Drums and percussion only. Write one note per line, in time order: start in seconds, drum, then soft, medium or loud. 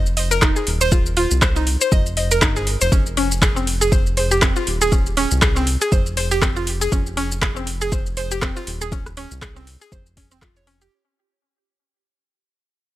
0.06 shaker soft
0.17 open hi-hat medium
0.31 shaker medium
0.42 kick loud
0.42 cross-stick loud
0.42 clap loud
0.42 shaker medium
0.56 shaker soft
0.67 open hi-hat medium
0.81 shaker medium
0.92 kick loud
0.92 shaker medium
1.06 shaker soft
1.17 open hi-hat medium
1.31 shaker medium
1.42 kick loud
1.42 cross-stick loud
1.42 clap loud
1.42 shaker medium
1.56 shaker soft
1.67 open hi-hat medium
1.81 shaker medium
1.92 kick loud
1.92 shaker medium
2.06 shaker soft
2.17 open hi-hat medium
2.31 shaker medium
2.42 kick loud
2.42 cross-stick loud
2.42 clap loud
2.42 shaker medium
2.56 shaker soft
2.67 open hi-hat medium
2.81 shaker medium
2.92 kick loud
2.92 shaker medium
3.06 shaker soft
3.17 open hi-hat medium
3.32 shaker medium
3.42 kick loud
3.42 cross-stick loud
3.42 clap loud
3.42 shaker medium
3.57 shaker soft
3.67 open hi-hat medium
3.82 shaker medium
3.92 kick loud
3.92 shaker medium
4.07 shaker soft
4.17 open hi-hat medium
4.31 shaker medium
4.42 kick loud
4.42 cross-stick loud
4.42 clap loud
4.42 shaker medium
4.56 shaker soft
4.67 open hi-hat medium
4.81 shaker medium
4.92 kick loud
4.92 shaker medium
5.06 shaker soft
5.17 open hi-hat medium
5.31 shaker medium
5.42 kick loud
5.42 cross-stick loud
5.42 clap loud
5.42 shaker medium
5.56 shaker soft
5.67 open hi-hat medium
5.81 shaker medium
5.92 kick loud
5.92 shaker medium
6.06 shaker soft
6.17 open hi-hat medium
6.31 shaker medium
6.42 kick loud
6.42 cross-stick loud
6.42 clap loud
6.42 shaker medium
6.56 shaker soft
6.67 open hi-hat medium
6.81 shaker medium
6.92 kick loud
6.92 shaker medium
7.06 shaker soft
7.17 open hi-hat medium
7.32 shaker medium
7.42 kick loud
7.42 cross-stick loud
7.42 clap loud
7.42 shaker medium
7.56 shaker soft
7.67 open hi-hat medium
7.81 shaker medium
7.92 kick loud
7.92 shaker medium
8.06 shaker soft
8.17 open hi-hat loud
8.31 shaker medium
8.42 kick loud
8.42 cross-stick loud
8.42 clap loud
8.42 shaker medium
8.56 shaker soft
8.67 open hi-hat loud
8.81 shaker medium
8.92 kick loud
8.92 shaker medium
9.06 cross-stick medium
9.06 shaker soft
9.17 open hi-hat medium
9.31 shaker medium
9.42 kick loud
9.42 cross-stick loud
9.42 clap loud
9.42 shaker medium
9.56 shaker soft
9.67 open hi-hat medium
9.82 shaker medium
9.92 kick loud
9.92 shaker medium
10.06 shaker soft
10.17 kick medium
10.17 open hi-hat loud
10.31 shaker medium
10.42 kick loud
10.42 cross-stick loud
10.42 clap loud
10.42 shaker medium
10.56 shaker soft
10.67 open hi-hat loud
10.81 shaker medium